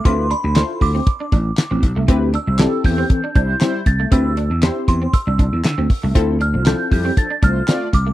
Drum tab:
HH |xxxoxxxx|xxxoxxxx|xxxxxxxo|xxxoxxxx|
CP |--x---x-|--x---x-|--x---x-|--x---x-|
SD |--o---o-|--o---o-|--o---o-|--o---o-|
BD |o--ooo-o|o--ooo-o|o--ooo-o|o--ooo-o|